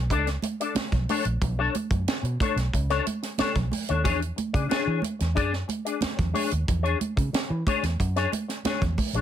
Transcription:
Already playing: B1
0.10 C#2 D4 A4 D5, kick, closed hi-hat
0.27 snare, closed hi-hat
0.42 muted clean electric guitar stroke, closed hi-hat, muted conga, high conga
0.60 D4 A4 D5, closed hi-hat
0.75 muted fingered electric bass stroke, snare, closed hi-hat, high conga
0.92 B1, muted clean electric guitar stroke, kick, snare, closed hi-hat, low conga
1.09 D4 A4 C#5, open hi-hat, high conga
1.25 A#1, muted clean electric guitar stroke, closed hi-hat
1.42 B1, muted clean electric guitar stroke, kick, closed hi-hat, muted conga, low conga
1.59 D4 A4 C#5
1.75 muted clean electric guitar stroke, closed hi-hat, muted conga, high conga
1.91 F#2, muted clean electric guitar stroke, kick, closed hi-hat
2.07 muted fingered electric bass stroke, muted clean electric guitar stroke, snare, closed hi-hat, muted conga
2.23 B2, muted clean electric guitar stroke, closed hi-hat
2.40 D4 A4 C#5, kick, closed hi-hat, high conga
2.56 B1, muted clean electric guitar stroke, snare, closed hi-hat
2.73 C#2, muted clean electric guitar stroke, kick, closed hi-hat
2.90 D4 A4 C#5, snare, closed hi-hat
3.06 muted clean electric guitar stroke, closed hi-hat, muted conga, high conga
3.23 muted clean electric guitar stroke, snare, closed hi-hat
3.38 D4 A4 C#5, muted fingered electric bass stroke, snare, closed hi-hat, muted conga, high conga
3.55 B1, kick, snare, closed hi-hat, low conga
3.71 muted clean electric guitar stroke, open hi-hat, muted conga, high conga
3.89 D#2 D4 A4 C#5, closed hi-hat
4.04 E2 D4 G#4 C#5, kick, closed hi-hat, muted conga, low conga
4.20 muted clean electric guitar stroke, closed hi-hat
4.36 muted clean electric guitar stroke, closed hi-hat, high conga
4.53 C#3 D4 G#4 D5, kick, closed hi-hat
4.69 D4 G#4 C#5, muted fingered electric bass stroke, snare, closed hi-hat, muted conga
4.87 E3
5.02 muted clean electric guitar stroke, closed hi-hat, muted conga, high conga
5.19 E2, muted clean electric guitar stroke, snare, closed hi-hat
5.35 F#2 D4 G#4 D5, kick, closed hi-hat, muted conga
5.53 snare
5.68 muted clean electric guitar stroke, closed hi-hat, muted conga, high conga
5.85 D4 G#4 D5, closed hi-hat
6.01 muted clean electric guitar stroke, muted fingered electric bass stroke, snare, closed hi-hat, muted conga, high conga
6.17 E2, muted clean electric guitar stroke, kick, snare, closed hi-hat, low conga
6.33 D4 G#4 C#5, open hi-hat, high conga
6.51 D#2, muted clean electric guitar stroke, closed hi-hat
6.67 E2, muted clean electric guitar stroke, kick, closed hi-hat, low conga
6.83 D4 G#4 C#5, closed hi-hat
6.99 muted clean electric guitar stroke, closed hi-hat, muted conga, high conga
7.16 C#3, muted clean electric guitar stroke, kick, closed hi-hat
7.33 muted clean electric guitar stroke, muted fingered electric bass stroke, snare, closed hi-hat, muted conga
7.50 E3, muted clean electric guitar stroke
7.67 D4 G#4 C#5, kick, closed hi-hat, muted conga, high conga
7.83 E2, muted clean electric guitar stroke, snare, closed hi-hat
8.00 F#2, muted clean electric guitar stroke, kick, closed hi-hat, muted conga
8.16 D4 G#4 C#5, snare, closed hi-hat
8.32 muted clean electric guitar stroke, closed hi-hat, muted conga, high conga
8.48 muted clean electric guitar stroke, snare, closed hi-hat
8.65 D4 G#4 C#5, muted fingered electric bass stroke, snare, closed hi-hat, muted conga, high conga
8.81 E2, kick, snare, closed hi-hat, low conga
8.98 muted clean electric guitar stroke, kick, open hi-hat, high conga
9.13 A#1 D4 G#4 C#5, closed hi-hat

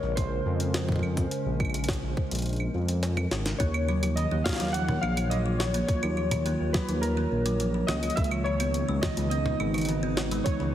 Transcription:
Already playing: C#3 G#3 C#4 A#4 C#5
0.03 A#1
0.16 C5, kick, closed hi-hat
0.46 F2
0.60 closed hi-hat
0.74 snare, closed hi-hat
0.89 kick
0.92 kick
0.96 kick
0.99 kick, claves
1.17 kick, closed hi-hat
1.31 closed hi-hat
1.46 A#1
1.60 kick, claves
1.65 claves
1.70 claves
1.74 closed hi-hat, claves
1.79 claves
1.84 closed hi-hat, claves
1.89 kick, snare
1.93 closed hi-hat
2.03 A#1
2.17 kick
2.31 A#1, closed hi-hat
2.35 closed hi-hat
2.39 closed hi-hat
2.42 closed hi-hat
2.46 closed hi-hat
2.49 closed hi-hat
2.53 closed hi-hat
2.56 closed hi-hat, claves
2.74 F2
2.88 closed hi-hat
3.03 snare, closed hi-hat
3.17 high tom, claves
3.31 G#1, snare
3.46 snare, closed hi-hat
3.58 D#2 D#3 A#3 C#5, kick, closed hi-hat
3.74 claves
3.88 F#3, claves
4.03 F3, closed hi-hat, claves
4.12 C#5 D#5
4.17 D#3, closed hi-hat
4.30 D#2 A#3 F4
4.44 F5, kick, snare, mid tom
4.49 snare
4.53 snare
4.56 F#3, snare
4.60 D#2, snare, closed hi-hat
4.64 snare
4.67 snare
4.71 F3 F#5, snare, closed hi-hat
4.88 D#3, mid tom
5.01 A#1 A#3 F5, claves
5.17 closed hi-hat, claves
5.30 F#3 D#5, closed hi-hat
5.46 F3
5.58 D#3 C#5, snare
5.74 A#3, closed hi-hat
5.87 C#5, kick, closed hi-hat
6.03 D#2 F#3, claves
6.17 F3, claves
6.31 D#3, closed hi-hat, mid tom, claves
6.46 A#3, closed hi-hat
6.60 D#2
6.73 F#3 B4, kick, snare, mid tom
6.89 D#2 F3, closed hi-hat
7.01 D#3 A#4, closed hi-hat
7.17 A#3
7.31 A#1
7.46 F#3, closed hi-hat
7.60 F3, closed hi-hat
7.74 D#3
7.87 C#2 A#3 D#5, snare, mid tom
8.03 closed hi-hat, claves
8.10 closed hi-hat
8.16 C#2 C#3 G#3 E5, kick, closed hi-hat
8.24 closed hi-hat
8.31 E3, claves
8.44 D#3 C#5, claves
8.57 B3 D#4, closed hi-hat, claves
8.74 closed hi-hat
8.88 C#2 G#3
9.01 E3 D#5, kick, snare, mid tom
9.17 C#2 D#3, closed hi-hat
9.24 B4
9.30 B3 D#5, closed hi-hat
9.46 mid tom
9.60 G#1 G#3, claves
9.74 E3, closed hi-hat, claves
9.78 closed hi-hat, claves
9.81 closed hi-hat, claves
9.85 closed hi-hat, claves
9.89 D#3, closed hi-hat
10.03 B3
10.17 snare
10.31 G#3, closed hi-hat
10.44 E3 C#5, kick, closed hi-hat
10.60 C#2 D#3

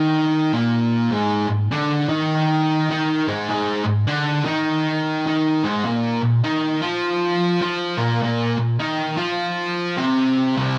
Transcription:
Already playing: D#3 D#4
0.53 A#2 A#3
1.11 G#2 G#3
1.48 G#2
1.71 D3 D4
2.09 D#3 D#4
2.90 D#3 D#4
3.28 G#2 G#3
3.50 G#2 G#3
3.85 G#2
4.07 D3 D4
4.44 D#3 D#4
5.27 D#3 D#4
5.63 G#2 G#3
5.85 A#2 A#3
6.22 A#2
6.44 D#3 D#4
6.81 F3 F4
7.61 F3 F4
7.97 A#2 A#3
8.22 A#2 A#3
8.58 A#2
8.79 D#3 D#4
9.17 F3 F4
9.97 C3 C4
10.56 C2 C3

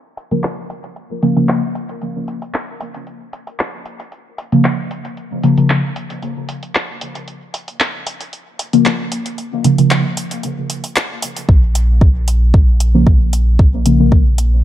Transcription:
0.17 closed hi-hat
0.31 C#3 F3 A#3, closed hi-hat
0.44 clap, closed hi-hat
0.70 closed hi-hat
0.84 closed hi-hat
0.96 closed hi-hat
1.22 C#3 F3 A#3, closed hi-hat
1.36 C#3 F3 A#3, closed hi-hat
1.49 clap, closed hi-hat
1.75 closed hi-hat
1.89 closed hi-hat
2.02 closed hi-hat
2.28 closed hi-hat
2.42 closed hi-hat
2.54 clap, closed hi-hat
2.80 closed hi-hat
2.94 closed hi-hat
3.07 closed hi-hat
3.33 closed hi-hat
3.47 closed hi-hat
3.59 clap, closed hi-hat
3.86 closed hi-hat
4.00 closed hi-hat
4.12 closed hi-hat
4.38 closed hi-hat
4.52 C#3 F3 A#3, closed hi-hat
4.65 clap, closed hi-hat
4.91 closed hi-hat
5.05 closed hi-hat
5.17 closed hi-hat
5.44 C#3 F3 A#3, closed hi-hat
5.57 C#3 F3 A#3, closed hi-hat
5.70 clap, closed hi-hat
5.96 closed hi-hat
6.10 closed hi-hat
6.22 closed hi-hat
6.49 closed hi-hat
6.63 closed hi-hat
6.75 clap, closed hi-hat
7.01 closed hi-hat
7.15 closed hi-hat
7.28 closed hi-hat
7.54 closed hi-hat
7.68 closed hi-hat
7.80 clap, closed hi-hat
8.07 closed hi-hat
8.21 closed hi-hat
8.33 closed hi-hat
8.59 closed hi-hat
8.73 C#3 F3 A#3, closed hi-hat
8.86 clap, closed hi-hat
9.12 closed hi-hat
9.26 closed hi-hat
9.38 closed hi-hat
9.64 C#3 F3 A#3, closed hi-hat
9.78 C#3 F3 A#3, closed hi-hat
9.91 clap, closed hi-hat
10.17 closed hi-hat
10.31 closed hi-hat
10.43 closed hi-hat
10.70 closed hi-hat
10.84 closed hi-hat
10.96 clap, closed hi-hat
11.22 closed hi-hat
11.37 closed hi-hat
11.49 A#1, kick
11.75 closed hi-hat
12.01 kick
12.28 closed hi-hat
12.54 kick
12.80 closed hi-hat
12.94 C#3 F3 A#3
13.07 kick
13.33 closed hi-hat
13.59 kick
13.86 C#3 F3 A#3, closed hi-hat
14.00 C#3 F3 A#3
14.12 kick
14.38 closed hi-hat

